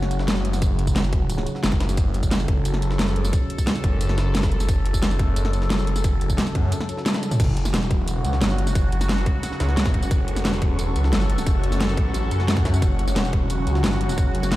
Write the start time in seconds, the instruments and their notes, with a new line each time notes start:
Already playing: detuned saw bass F#1, analog synth pad C#3 F#3 F#4
0.03 snare
0.11 closed hi-hat, tambourine
0.19 snare
0.28 snare, closed hi-hat, tambourine
0.36 tambourine
0.45 closed hi-hat
0.53 snare, closed hi-hat, tambourine
0.62 detuned saw bass F#1, kick, closed hi-hat, tambourine
0.79 closed hi-hat
0.87 kick, closed hi-hat, tambourine
0.96 snare, closed hi-hat, tambourine
1.04 snare, tambourine
1.13 kick, closed hi-hat
1.30 closed hi-hat, tambourine
1.38 snare
1.47 closed hi-hat, tambourine
1.55 snare
1.63 detuned saw bass F#1, snare, closed hi-hat, tambourine
1.72 kick, closed hi-hat, tambourine
1.80 snare, closed hi-hat
1.89 snare, closed hi-hat, tambourine
1.97 detuned saw bass F#1, analog synth pad A4, kick, closed hi-hat, tambourine
2.14 closed hi-hat
2.23 kick, closed hi-hat, tambourine
2.31 snare, closed hi-hat, tambourine
2.40 snare, tambourine
2.48 detuned saw bass F#1, kick, closed hi-hat
2.65 closed hi-hat, tambourine
2.74 snare
2.82 closed hi-hat, tambourine
2.91 snare
2.99 snare, closed hi-hat, tambourine
3.08 tambourine
3.16 closed hi-hat
3.25 snare, closed hi-hat, tambourine
3.33 kick, closed hi-hat, tambourine
3.50 closed hi-hat
3.58 kick, closed hi-hat, tambourine
3.67 snare, closed hi-hat, tambourine
3.75 snare, tambourine
3.84 detuned saw bass F#1, kick, closed hi-hat
4.01 closed hi-hat, tambourine
4.09 snare
4.18 snare, closed hi-hat, tambourine
4.35 snare, closed hi-hat, tambourine
4.43 kick, snare, closed hi-hat, tambourine
4.52 closed hi-hat
4.60 snare, closed hi-hat, tambourine
4.69 detuned saw bass F#1, kick, closed hi-hat, tambourine
4.86 closed hi-hat
4.94 kick, closed hi-hat, tambourine
5.03 snare, closed hi-hat, tambourine
5.11 snare, tambourine
5.19 detuned saw bass F#1, kick, closed hi-hat
5.36 closed hi-hat, tambourine
5.45 snare
5.53 closed hi-hat, tambourine
5.62 snare
5.70 snare, closed hi-hat, tambourine
5.79 tambourine
5.87 closed hi-hat
5.96 snare, closed hi-hat, tambourine
6.04 detuned saw bass F#1, kick, closed hi-hat, tambourine
6.21 closed hi-hat
6.30 kick, closed hi-hat, tambourine
6.38 snare, closed hi-hat, tambourine
6.47 snare, tambourine
6.55 detuned saw bass F#2, kick, closed hi-hat
6.72 closed hi-hat, tambourine
6.80 snare
6.89 closed hi-hat, tambourine
6.97 snare
7.06 snare, closed hi-hat, high tom, tambourine
7.14 snare, closed hi-hat, high tom, tambourine
7.23 closed hi-hat, tambourine
7.31 snare, closed hi-hat, mid tom, tambourine
7.40 detuned saw bass F#1, analog synth pad C#3 F#3 F#4, ambient pad C#4, kick, closed hi-hat, crash, tambourine
7.44 ambient pad F#4
7.57 closed hi-hat
7.65 snare, closed hi-hat, tambourine
7.74 detuned saw bass E1, snare, closed hi-hat, tambourine
7.82 tambourine
7.86 ambient pad F#5
7.91 kick, closed hi-hat
7.96 ambient pad C#6
8.08 closed hi-hat, tambourine
8.25 detuned saw bass C#2, closed hi-hat, tambourine
8.33 snare
8.41 detuned saw bass G1, snare, closed hi-hat, tambourine
8.50 tambourine
8.58 closed hi-hat
8.67 snare, closed hi-hat, tambourine
8.75 detuned saw bass F#1, kick, closed hi-hat, tambourine
8.92 closed hi-hat
9.01 snare, closed hi-hat, tambourine
9.09 snare, closed hi-hat, tambourine
9.18 tambourine
9.26 kick, closed hi-hat
9.43 snare, closed hi-hat, tambourine
9.52 snare
9.60 detuned saw bass C#2, snare, closed hi-hat, tambourine
9.69 snare
9.77 snare, closed hi-hat, tambourine
9.86 kick, snare, closed hi-hat, tambourine
9.94 detuned saw bass F#1, kick, closed hi-hat
10.03 closed hi-hat, tambourine
10.11 detuned saw bass F#1, analog synth pad A4, kick, closed hi-hat, tambourine
10.28 closed hi-hat
10.36 snare, closed hi-hat, tambourine
10.45 detuned saw bass E1, snare, closed hi-hat, tambourine
10.53 tambourine
10.62 kick, closed hi-hat
10.79 closed hi-hat, tambourine
10.96 detuned saw bass C#2, closed hi-hat, tambourine
11.04 snare
11.13 detuned saw bass G1, snare, closed hi-hat, tambourine
11.21 tambourine
11.30 closed hi-hat
11.38 snare, closed hi-hat, tambourine
11.47 detuned saw bass F#1, kick, closed hi-hat, tambourine
11.64 closed hi-hat
11.72 snare, closed hi-hat, tambourine
11.80 snare, closed hi-hat, tambourine
11.89 tambourine
11.97 detuned saw bass A1, kick, closed hi-hat
12.14 snare, closed hi-hat, tambourine
12.31 detuned saw bass F#2, closed hi-hat, tambourine
12.40 snare
12.48 snare, closed hi-hat, tambourine
12.57 kick, snare, closed hi-hat, tambourine
12.65 kick, snare, closed hi-hat, tambourine
12.74 closed hi-hat, tambourine
12.82 detuned saw bass F#1, analog synth pad F#4, kick, closed hi-hat, tambourine
12.99 closed hi-hat
13.08 snare, closed hi-hat, tambourine
13.16 detuned saw bass E1, snare, closed hi-hat, tambourine
13.25 tambourine
13.33 kick, closed hi-hat
13.38 ambient pad F#6
13.50 closed hi-hat, tambourine
13.67 detuned saw bass C#2, closed hi-hat, tambourine
13.75 snare
13.84 detuned saw bass G1, snare, closed hi-hat, tambourine
13.92 tambourine
14.01 closed hi-hat
14.09 snare, closed hi-hat, tambourine
14.18 detuned saw bass F#1, kick, closed hi-hat, tambourine
14.35 closed hi-hat
14.43 snare, closed hi-hat, tambourine
14.52 snare, closed hi-hat, tambourine